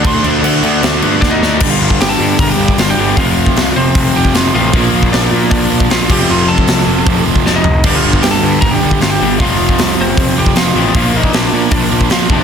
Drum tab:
CC |x-x-x-x-x-x-----|x---------------|----------------|--------------x-|
HH |----------------|----o---o---o---|o---o---o---o---|o---o---o---o---|
SD |--------o---o-o-|----o-------o---|----o-------o---|----o-------o---|
FT |----------------|----------------|----------------|----------------|
BD |o-----------o---|o--o----o--o----|o--o----o--o----|o--o----o--o--o-|

CC |----------------|x---------------|----------------|----------------|
HH |----o---o-------|----o---o---o---|o---o---o---o---|o---o---o---o---|
SD |----o-------o---|----o-------o---|----o-------o---|----o-------o---|
FT |--------------o-|----------------|----------------|----------------|
BD |---o----o--o----|o--o----o--o----|o--o----o--o----|o--o----o--o--o-|